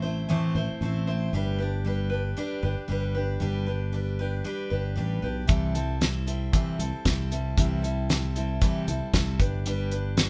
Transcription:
Already playing: fingered electric bass A1
0.02 steel-string acoustic guitar A3 C4 E4 C5
0.29 steel-string acoustic guitar A2 E3 A3 C4 E4 C5
0.55 fingered electric bass A1, steel-string acoustic guitar A3 C4 E4 C5
0.81 fingered electric bass A1, steel-string acoustic guitar A3 C4 E4
0.85 steel-string acoustic guitar C5
1.07 steel-string acoustic guitar A3 C4 E4 C5
1.33 fingered electric bass G1, steel-string acoustic guitar G3 D4 G4 B4
1.59 steel-string acoustic guitar D4 G4 B4
1.85 steel-string acoustic guitar G3 D4 G4 B4
2.10 steel-string acoustic guitar D4 G4 B4
2.37 steel-string acoustic guitar G3 D4 G4 B4
2.62 fingered electric bass G1, steel-string acoustic guitar D4 G4 B4
2.88 fingered electric bass G1, steel-string acoustic guitar G3 D4 G4 B4
3.15 steel-string acoustic guitar D4 G4 B4
3.40 fingered electric bass G1, steel-string acoustic guitar G3 D4 G4 B4
3.66 steel-string acoustic guitar D4 G4 B4
3.92 steel-string acoustic guitar G3 D4 G4 B4
4.19 steel-string acoustic guitar D4 G4 B4
4.44 steel-string acoustic guitar G3 D4 G4 B4
4.70 fingered electric bass G1, steel-string acoustic guitar D4 G4 B4
4.96 fingered electric bass A1, steel-string acoustic guitar G3 D4 G4 B4
5.22 fingered electric bass B1, steel-string acoustic guitar D4 G4 B4
5.47 fingered electric bass C2, steel-string acoustic guitar C3 E3 G3 C4 E4 A4, kick, closed hi-hat
5.75 steel-string acoustic guitar G3 C4 E4 A4, closed hi-hat
6.01 steel-string acoustic guitar G3 C4 E4 A4, snare, closed hi-hat
6.27 steel-string acoustic guitar G3 C4 E4 A4, closed hi-hat
6.53 steel-string acoustic guitar C3 E3 G3 C4 E4 A4, kick, closed hi-hat
6.79 fingered electric bass C2, steel-string acoustic guitar G3 C4 E4 A4, closed hi-hat
7.05 fingered electric bass C2, steel-string acoustic guitar G3 C4 E4 A4, kick, snare, closed hi-hat
7.31 steel-string acoustic guitar G3 C4 E4 A4, closed hi-hat
7.57 fingered electric bass C2, steel-string acoustic guitar C3 E3 G3 C4 E4 A4, kick, closed hi-hat
7.82 steel-string acoustic guitar G3 C4 E4 A4, closed hi-hat
8.09 steel-string acoustic guitar G3 C4 E4 A4, snare, closed hi-hat
8.35 steel-string acoustic guitar G3 C4 E4 A4, closed hi-hat
8.61 steel-string acoustic guitar C3 E3 G3 C4 E4 A4, kick, closed hi-hat
8.87 fingered electric bass C2, steel-string acoustic guitar G3 C4 E4 A4, closed hi-hat
9.13 fingered electric bass C2, steel-string acoustic guitar G3 C4 E4, kick, snare, closed hi-hat
9.18 steel-string acoustic guitar A4
9.39 fingered electric bass G1, steel-string acoustic guitar D4 G4 B4, kick, closed hi-hat
9.66 steel-string acoustic guitar G3 D4 G4 B4, closed hi-hat
9.91 steel-string acoustic guitar D4 G4 B4, closed hi-hat
10.17 steel-string acoustic guitar G3 D4 G4 B4, snare, closed hi-hat

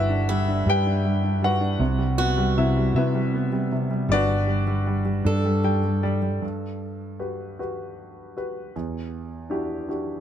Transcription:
Already playing: fretless electric bass G1, grand piano G3 D4 E4 F#4 G4 A4 B4 D5 E5 F#5 G5 A5
0.09 grand piano D4
0.29 grand piano G3, steel-string acoustic guitar E4
0.48 grand piano D4
0.66 fretless electric bass G2, grand piano G3 G4 B4 G5
0.86 grand piano D4
1.04 grand piano G3
1.24 grand piano D4
1.42 grand piano G3 F#4 B4 F#5
1.61 grand piano D4
1.79 fretless electric bass C2, grand piano C3
1.98 grand piano G3
2.18 grand piano B3, steel-string acoustic guitar F#4
2.37 grand piano G3
2.58 grand piano C3 E4 E5
2.77 grand piano G3
2.94 fretless electric bass C3, grand piano C3 E4 B4 E5
3.14 grand piano G3
3.34 grand piano B3
3.52 grand piano G3
3.72 grand piano C3
3.91 grand piano G3
4.09 fretless electric bass G1, grand piano G3 D4 D5
4.13 grand piano F#4 B4
4.28 grand piano G3
4.47 grand piano G3
4.67 grand piano G3
4.87 grand piano G3
5.05 grand piano G3
5.25 fretless electric bass G2, grand piano D4, steel-string acoustic guitar A4
5.45 grand piano G3
5.64 grand piano G3 G5
5.84 grand piano G3
6.03 grand piano G3 D5
6.22 grand piano G3
6.42 grand piano G2
7.19 grand piano F#4 G4 B4
7.59 grand piano F#4 G4 B4
8.37 grand piano F#4 G4 B4
8.76 grand piano E2
9.50 grand piano D4 E4 F#4 G4
9.89 grand piano D4 E4 F#4 G4

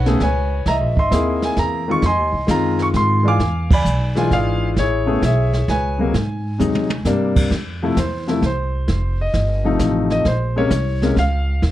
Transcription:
Already playing: upright bass B1, grand piano B4 C#5 F#5
0.06 grand piano C#3 A3 B3 G#4, snare
0.20 upright bass C#2, grand piano B4 C#5 G#5, kick, snare
0.66 upright bass C2, grand piano D#5 E5 A#5, brush sweep, kick, snare
0.80 upright bass A#1
0.96 upright bass G#1, grand piano D#5 E5 C6, kick
1.11 upright bass D#2, grand piano A#3 C4 E4 G#4, kick, snare, hi-hat pedal
1.42 grand piano G#5, snare
1.56 upright bass E2, grand piano A#5, kick, snare
1.88 grand piano D#3 G#3 C4 F4 C#6
2.02 upright bass F2, grand piano C6, brush sweep, kick, snare
2.07 grand piano D#5 G#5
2.17 upright bass D#2
2.32 upright bass C2
2.47 upright bass F#2, grand piano D#3 G#3 C4 F4 A#5, kick, snare, hi-hat pedal
2.79 grand piano C#6, snare
2.94 upright bass G#2, grand piano C6, kick, snare
3.23 grand piano E3 G#3 D4 F4
3.28 grand piano F5 G#5 D6
3.39 upright bass E2, brush sweep, kick, snare
3.71 grand piano D5 G#5 B5, kick, crash
3.85 upright bass B1, hi-hat pedal
4.16 grand piano E3 G#3 D4 F4 G#5, snare
4.31 upright bass G#1, grand piano G#4 D5 F5, kick, snare
4.76 upright bass A1, grand piano E4 G#4 C#5, brush sweep, kick, snare
5.06 grand piano C#3 A3 B3 G#4
5.22 upright bass B1, grand piano G#4 C#5 E5, kick, snare, hi-hat pedal
5.53 snare
5.68 upright bass C#2, grand piano B4 C#5 G#5, kick, snare
5.98 grand piano C3 F#3 G#3 A#3
6.14 upright bass G#2, brush sweep, kick, snare
6.58 upright bass D#2, grand piano C3 F#3 G#3 D#4, hi-hat pedal, mid tom
6.75 high tom
6.90 high tom
7.05 upright bass G2, grand piano C3 G3 A#3 D4, snare, hi-hat pedal
7.36 kick, crash
7.51 upright bass F2, brush sweep, kick, snare
7.83 grand piano C3 F3 A3 E4
7.96 upright bass E2, grand piano C5, kick, snare, hi-hat pedal
8.27 grand piano C3 F3 A3 E4 A4, snare
8.42 upright bass C2, grand piano C5, kick, snare
8.88 upright bass F1, brush sweep, kick, snare
9.21 grand piano D#5
9.34 upright bass G1, kick, snare
9.64 grand piano C3 F3 A3 D#4
9.79 upright bass A1, kick, snare, hi-hat pedal
10.10 grand piano D#5, snare
10.25 upright bass A#1, grand piano C5, brush sweep, kick, snare
10.56 grand piano C3 G#3 A#3 C#4 C#5
10.71 upright bass C2, kick, snare, hi-hat pedal
11.02 grand piano C3 G#3 A#3 C#4, snare
11.16 upright bass C#2, grand piano F5, kick, snare
11.62 upright bass D#2, brush sweep, kick, snare

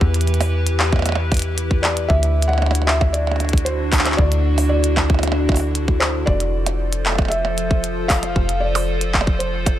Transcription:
Already playing: ambient pad E3 E4 G4 B4, felt piano B4
0.01 fm bass E2, kick
0.14 closed hi-hat
0.21 closed hi-hat
0.27 closed hi-hat
0.34 closed hi-hat
0.40 open hi-hat, percussion blips
0.67 closed hi-hat
0.80 clap, percussion blips
0.92 kick, percussion blips
0.96 percussion blips
0.99 percussion blips
1.02 closed hi-hat, percussion blips
1.06 percussion blips
1.09 percussion blips
1.12 percussion blips
1.15 percussion blips
1.32 kick, closed hi-hat, percussion blips
1.34 closed hi-hat
1.37 closed hi-hat
1.39 closed hi-hat
1.42 closed hi-hat
1.58 closed hi-hat
1.71 kick
1.82 felt piano D5, clap
1.97 closed hi-hat
2.08 fm bass D2, ambient pad D3 D4 F#4, felt piano E5, kick
2.23 closed hi-hat
2.42 closed hi-hat
2.48 felt piano F#5, percussion blips
2.53 percussion blips
2.58 percussion blips
2.62 percussion blips
2.66 percussion blips
2.71 percussion blips
2.75 closed hi-hat
2.82 percussion blips
2.87 felt piano E5, clap
3.01 kick, percussion blips
3.13 felt piano D5, closed hi-hat
3.27 percussion blips
3.31 percussion blips
3.36 percussion blips
3.40 closed hi-hat, percussion blips
3.45 percussion blips
3.49 closed hi-hat, percussion blips
3.53 kick
3.58 closed hi-hat
3.65 felt piano C5, closed hi-hat
3.92 kick, clap, open hi-hat
3.99 clap
4.06 clap, closed hi-hat, percussion blips
4.12 clap
4.17 fm bass D2, felt piano D5, kick
4.32 closed hi-hat
4.58 open hi-hat, percussion blips
4.69 felt piano D5
4.84 closed hi-hat
4.97 kick, clap, percussion blips
5.10 kick, percussion blips
5.14 percussion blips
5.19 percussion blips
5.23 closed hi-hat, percussion blips
5.27 percussion blips
5.32 percussion blips
5.49 kick, percussion blips
5.52 percussion blips
5.54 open hi-hat, percussion blips
5.57 percussion blips
5.60 percussion blips
5.75 closed hi-hat
5.88 kick
6.00 felt piano C5, clap
6.26 fm bass F1, ambient pad F3 F4 A4 C5, felt piano D5, kick
6.40 closed hi-hat
6.66 closed hi-hat, percussion blips
6.93 closed hi-hat
7.06 clap, percussion blips
7.09 percussion blips
7.12 percussion blips
7.15 kick, percussion blips
7.19 percussion blips
7.22 percussion blips
7.25 percussion blips
7.28 felt piano E5, closed hi-hat, percussion blips
7.45 percussion blips
7.58 closed hi-hat
7.71 kick
7.84 closed hi-hat
8.08 felt piano F5, kick, clap, open hi-hat
8.23 closed hi-hat, percussion blips
8.36 fm bass F1, kick
8.49 closed hi-hat
8.60 felt piano D5
8.75 open hi-hat, percussion blips
9.01 closed hi-hat
9.14 kick, clap, percussion blips
9.21 percussion blips
9.27 kick
9.39 felt piano C5, closed hi-hat
9.66 kick, closed hi-hat, percussion blips

